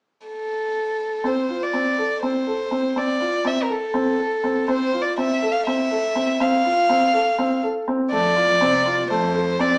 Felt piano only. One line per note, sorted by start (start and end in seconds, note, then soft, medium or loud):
1.24 1.42 C4 medium
1.49 1.67 F4 soft
1.73 1.92 C4 medium
1.98 2.16 A4 soft
2.23 2.41 C4 soft
2.47 2.65 A4 soft
2.71 2.90 C4 soft
2.96 3.15 C4 medium
3.20 3.39 F4 soft
3.45 3.63 C4 medium
3.69 3.88 A4 soft
3.94 4.12 C4 medium
4.19 4.37 A4 soft
4.44 4.62 C4 medium
4.68 4.86 C4 medium
4.93 5.11 F4 soft
5.18 5.36 C4 medium
5.42 5.61 A4 soft
5.67 5.85 C4 medium
5.91 6.09 A4 soft
6.15 6.34 C4 medium
6.40 6.59 C4 medium
6.65 6.83 F4 soft
6.89 7.08 C4 medium
7.14 7.32 A4 medium
7.38 7.57 C4 medium
7.63 7.82 A4 soft
7.88 8.06 C4 medium
8.12 8.30 A3 medium
8.36 8.55 F4 medium
8.61 8.79 C4 medium
8.86 9.04 F4 medium
9.10 9.29 A3 medium
9.34 9.53 A4 medium
9.59 9.78 C4 medium